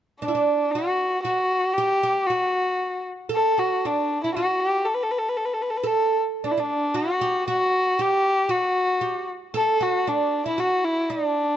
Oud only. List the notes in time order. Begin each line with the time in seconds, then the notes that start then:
0.22 D4
0.28 E4
0.35 D4
0.75 F#4
1.25 F#4
1.78 G4
2.03 G4
2.30 F#4
3.29 A4
3.58 F#4
3.85 D4
4.24 E4
4.37 F#4
5.84 A4
6.44 D4
6.58 D4
6.94 F#4
7.21 G4
7.48 F#4
7.99 G4
8.49 F#4
9.01 G4
9.54 A4
9.80 F#4
10.07 D4
10.46 E4
10.58 F#4
11.10 D4